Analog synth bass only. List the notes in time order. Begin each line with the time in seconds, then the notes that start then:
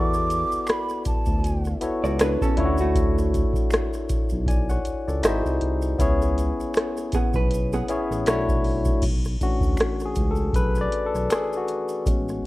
Already playing: E2
0.53 D2
1.07 D2
1.27 D2
1.82 C#2
2.04 C#2
2.58 D2
3.54 B1
4.10 B1
4.32 B1
4.87 C#2
5.08 C#2
5.24 G#1
5.46 C2
5.62 C2
5.99 C#2
6.59 B1
7.13 B1
7.35 B1
7.90 A1
8.11 A1
8.27 B1
9.03 B1
9.61 D2
10.17 C#2
10.54 B1
11.14 B1
12.07 A1